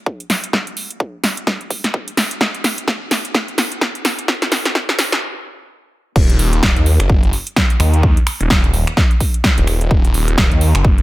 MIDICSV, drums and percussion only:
0, 0, Header, 1, 2, 480
1, 0, Start_track
1, 0, Key_signature, -6, "minor"
1, 0, Tempo, 468750
1, 546, Time_signature, 4, 2, 24, 8
1, 11287, End_track
2, 0, Start_track
2, 0, Title_t, "Drums"
2, 65, Note_on_c, 9, 36, 117
2, 168, Note_off_c, 9, 36, 0
2, 207, Note_on_c, 9, 42, 53
2, 306, Note_on_c, 9, 38, 58
2, 306, Note_on_c, 9, 46, 102
2, 309, Note_off_c, 9, 42, 0
2, 408, Note_off_c, 9, 38, 0
2, 408, Note_off_c, 9, 46, 0
2, 447, Note_on_c, 9, 42, 69
2, 545, Note_on_c, 9, 36, 119
2, 546, Note_on_c, 9, 38, 61
2, 549, Note_off_c, 9, 42, 0
2, 648, Note_off_c, 9, 36, 0
2, 648, Note_off_c, 9, 38, 0
2, 687, Note_on_c, 9, 42, 54
2, 786, Note_on_c, 9, 46, 109
2, 790, Note_off_c, 9, 42, 0
2, 888, Note_off_c, 9, 46, 0
2, 927, Note_on_c, 9, 42, 65
2, 1025, Note_on_c, 9, 36, 123
2, 1029, Note_off_c, 9, 42, 0
2, 1128, Note_off_c, 9, 36, 0
2, 1265, Note_on_c, 9, 38, 65
2, 1265, Note_on_c, 9, 46, 108
2, 1368, Note_off_c, 9, 38, 0
2, 1368, Note_off_c, 9, 46, 0
2, 1406, Note_on_c, 9, 42, 64
2, 1505, Note_on_c, 9, 36, 121
2, 1506, Note_on_c, 9, 38, 64
2, 1509, Note_off_c, 9, 42, 0
2, 1608, Note_off_c, 9, 36, 0
2, 1608, Note_off_c, 9, 38, 0
2, 1647, Note_on_c, 9, 42, 37
2, 1745, Note_on_c, 9, 36, 62
2, 1746, Note_on_c, 9, 46, 107
2, 1749, Note_off_c, 9, 42, 0
2, 1848, Note_off_c, 9, 36, 0
2, 1848, Note_off_c, 9, 46, 0
2, 1887, Note_on_c, 9, 38, 60
2, 1887, Note_on_c, 9, 42, 64
2, 1985, Note_on_c, 9, 36, 116
2, 1989, Note_off_c, 9, 38, 0
2, 1989, Note_off_c, 9, 42, 0
2, 2088, Note_off_c, 9, 36, 0
2, 2126, Note_on_c, 9, 42, 53
2, 2225, Note_on_c, 9, 38, 75
2, 2225, Note_on_c, 9, 46, 113
2, 2229, Note_off_c, 9, 42, 0
2, 2328, Note_off_c, 9, 38, 0
2, 2328, Note_off_c, 9, 46, 0
2, 2366, Note_on_c, 9, 42, 66
2, 2465, Note_on_c, 9, 36, 127
2, 2466, Note_on_c, 9, 38, 76
2, 2469, Note_off_c, 9, 42, 0
2, 2568, Note_off_c, 9, 36, 0
2, 2568, Note_off_c, 9, 38, 0
2, 2607, Note_on_c, 9, 42, 52
2, 2706, Note_on_c, 9, 38, 74
2, 2706, Note_on_c, 9, 46, 112
2, 2709, Note_off_c, 9, 42, 0
2, 2808, Note_off_c, 9, 38, 0
2, 2808, Note_off_c, 9, 46, 0
2, 2847, Note_on_c, 9, 42, 64
2, 2945, Note_on_c, 9, 36, 122
2, 2946, Note_on_c, 9, 38, 78
2, 2949, Note_off_c, 9, 42, 0
2, 3047, Note_off_c, 9, 36, 0
2, 3048, Note_off_c, 9, 38, 0
2, 3186, Note_on_c, 9, 38, 81
2, 3186, Note_on_c, 9, 46, 113
2, 3288, Note_off_c, 9, 38, 0
2, 3288, Note_off_c, 9, 46, 0
2, 3327, Note_on_c, 9, 42, 64
2, 3425, Note_on_c, 9, 36, 120
2, 3426, Note_on_c, 9, 38, 84
2, 3429, Note_off_c, 9, 42, 0
2, 3527, Note_off_c, 9, 36, 0
2, 3528, Note_off_c, 9, 38, 0
2, 3567, Note_on_c, 9, 42, 36
2, 3665, Note_on_c, 9, 38, 85
2, 3665, Note_on_c, 9, 46, 111
2, 3669, Note_off_c, 9, 42, 0
2, 3768, Note_off_c, 9, 38, 0
2, 3768, Note_off_c, 9, 46, 0
2, 3806, Note_on_c, 9, 42, 63
2, 3905, Note_on_c, 9, 36, 123
2, 3906, Note_on_c, 9, 38, 83
2, 3909, Note_off_c, 9, 42, 0
2, 4007, Note_off_c, 9, 36, 0
2, 4008, Note_off_c, 9, 38, 0
2, 4047, Note_on_c, 9, 42, 51
2, 4146, Note_on_c, 9, 38, 92
2, 4146, Note_on_c, 9, 46, 115
2, 4149, Note_off_c, 9, 42, 0
2, 4248, Note_off_c, 9, 38, 0
2, 4248, Note_off_c, 9, 46, 0
2, 4287, Note_on_c, 9, 42, 66
2, 4385, Note_on_c, 9, 36, 124
2, 4385, Note_on_c, 9, 38, 90
2, 4389, Note_off_c, 9, 42, 0
2, 4487, Note_off_c, 9, 36, 0
2, 4488, Note_off_c, 9, 38, 0
2, 4527, Note_on_c, 9, 38, 85
2, 4527, Note_on_c, 9, 42, 53
2, 4626, Note_off_c, 9, 38, 0
2, 4626, Note_on_c, 9, 38, 95
2, 4626, Note_on_c, 9, 46, 112
2, 4629, Note_off_c, 9, 42, 0
2, 4728, Note_off_c, 9, 38, 0
2, 4728, Note_off_c, 9, 46, 0
2, 4766, Note_on_c, 9, 38, 85
2, 4766, Note_on_c, 9, 42, 64
2, 4865, Note_off_c, 9, 38, 0
2, 4865, Note_on_c, 9, 36, 127
2, 4865, Note_on_c, 9, 38, 95
2, 4869, Note_off_c, 9, 42, 0
2, 4967, Note_off_c, 9, 36, 0
2, 4968, Note_off_c, 9, 38, 0
2, 5007, Note_on_c, 9, 38, 90
2, 5106, Note_off_c, 9, 38, 0
2, 5106, Note_on_c, 9, 38, 100
2, 5106, Note_on_c, 9, 46, 116
2, 5208, Note_off_c, 9, 38, 0
2, 5208, Note_off_c, 9, 46, 0
2, 5247, Note_on_c, 9, 38, 90
2, 5247, Note_on_c, 9, 42, 65
2, 5349, Note_off_c, 9, 38, 0
2, 5349, Note_off_c, 9, 42, 0
2, 6305, Note_on_c, 9, 36, 119
2, 6306, Note_on_c, 9, 49, 103
2, 6408, Note_off_c, 9, 36, 0
2, 6408, Note_off_c, 9, 49, 0
2, 6447, Note_on_c, 9, 42, 57
2, 6546, Note_on_c, 9, 46, 110
2, 6549, Note_off_c, 9, 42, 0
2, 6648, Note_off_c, 9, 46, 0
2, 6687, Note_on_c, 9, 42, 71
2, 6786, Note_on_c, 9, 36, 123
2, 6787, Note_on_c, 9, 38, 127
2, 6789, Note_off_c, 9, 42, 0
2, 6888, Note_off_c, 9, 36, 0
2, 6889, Note_off_c, 9, 38, 0
2, 6927, Note_on_c, 9, 42, 40
2, 7026, Note_on_c, 9, 46, 106
2, 7029, Note_off_c, 9, 42, 0
2, 7128, Note_off_c, 9, 46, 0
2, 7167, Note_on_c, 9, 26, 75
2, 7167, Note_on_c, 9, 42, 70
2, 7265, Note_on_c, 9, 36, 121
2, 7269, Note_off_c, 9, 26, 0
2, 7269, Note_off_c, 9, 42, 0
2, 7368, Note_off_c, 9, 36, 0
2, 7407, Note_on_c, 9, 42, 40
2, 7506, Note_on_c, 9, 46, 105
2, 7509, Note_off_c, 9, 42, 0
2, 7608, Note_off_c, 9, 46, 0
2, 7647, Note_on_c, 9, 42, 68
2, 7746, Note_on_c, 9, 36, 114
2, 7746, Note_on_c, 9, 38, 124
2, 7749, Note_off_c, 9, 42, 0
2, 7848, Note_off_c, 9, 36, 0
2, 7849, Note_off_c, 9, 38, 0
2, 7886, Note_on_c, 9, 42, 56
2, 7986, Note_on_c, 9, 26, 67
2, 7986, Note_on_c, 9, 46, 114
2, 7989, Note_off_c, 9, 42, 0
2, 8088, Note_off_c, 9, 26, 0
2, 8088, Note_off_c, 9, 46, 0
2, 8126, Note_on_c, 9, 42, 69
2, 8226, Note_on_c, 9, 36, 127
2, 8229, Note_off_c, 9, 42, 0
2, 8328, Note_off_c, 9, 36, 0
2, 8367, Note_on_c, 9, 42, 56
2, 8466, Note_on_c, 9, 26, 82
2, 8466, Note_on_c, 9, 46, 115
2, 8469, Note_off_c, 9, 42, 0
2, 8568, Note_off_c, 9, 26, 0
2, 8568, Note_off_c, 9, 46, 0
2, 8607, Note_on_c, 9, 42, 65
2, 8706, Note_on_c, 9, 36, 126
2, 8706, Note_on_c, 9, 38, 127
2, 8709, Note_off_c, 9, 42, 0
2, 8808, Note_off_c, 9, 36, 0
2, 8809, Note_off_c, 9, 38, 0
2, 8847, Note_on_c, 9, 42, 39
2, 8946, Note_on_c, 9, 46, 109
2, 8949, Note_off_c, 9, 42, 0
2, 9048, Note_off_c, 9, 46, 0
2, 9086, Note_on_c, 9, 26, 75
2, 9086, Note_on_c, 9, 42, 67
2, 9186, Note_on_c, 9, 36, 125
2, 9186, Note_on_c, 9, 38, 66
2, 9189, Note_off_c, 9, 26, 0
2, 9189, Note_off_c, 9, 42, 0
2, 9288, Note_off_c, 9, 36, 0
2, 9289, Note_off_c, 9, 38, 0
2, 9327, Note_on_c, 9, 42, 37
2, 9425, Note_on_c, 9, 46, 112
2, 9426, Note_on_c, 9, 36, 65
2, 9429, Note_off_c, 9, 42, 0
2, 9528, Note_off_c, 9, 36, 0
2, 9528, Note_off_c, 9, 46, 0
2, 9567, Note_on_c, 9, 42, 67
2, 9666, Note_on_c, 9, 36, 117
2, 9666, Note_on_c, 9, 38, 122
2, 9669, Note_off_c, 9, 42, 0
2, 9768, Note_off_c, 9, 36, 0
2, 9769, Note_off_c, 9, 38, 0
2, 9807, Note_on_c, 9, 42, 55
2, 9906, Note_on_c, 9, 26, 66
2, 9906, Note_on_c, 9, 46, 109
2, 9909, Note_off_c, 9, 42, 0
2, 10008, Note_off_c, 9, 26, 0
2, 10008, Note_off_c, 9, 46, 0
2, 10047, Note_on_c, 9, 42, 67
2, 10145, Note_on_c, 9, 36, 127
2, 10149, Note_off_c, 9, 42, 0
2, 10248, Note_off_c, 9, 36, 0
2, 10287, Note_on_c, 9, 42, 54
2, 10386, Note_on_c, 9, 46, 117
2, 10389, Note_off_c, 9, 42, 0
2, 10488, Note_off_c, 9, 46, 0
2, 10527, Note_on_c, 9, 42, 64
2, 10626, Note_on_c, 9, 36, 123
2, 10626, Note_on_c, 9, 38, 126
2, 10629, Note_off_c, 9, 42, 0
2, 10728, Note_off_c, 9, 36, 0
2, 10729, Note_off_c, 9, 38, 0
2, 10767, Note_on_c, 9, 42, 36
2, 10866, Note_on_c, 9, 46, 114
2, 10869, Note_off_c, 9, 42, 0
2, 10968, Note_off_c, 9, 46, 0
2, 11007, Note_on_c, 9, 26, 77
2, 11007, Note_on_c, 9, 42, 64
2, 11105, Note_on_c, 9, 36, 127
2, 11109, Note_off_c, 9, 26, 0
2, 11109, Note_off_c, 9, 42, 0
2, 11208, Note_off_c, 9, 36, 0
2, 11247, Note_on_c, 9, 42, 38
2, 11287, Note_off_c, 9, 42, 0
2, 11287, End_track
0, 0, End_of_file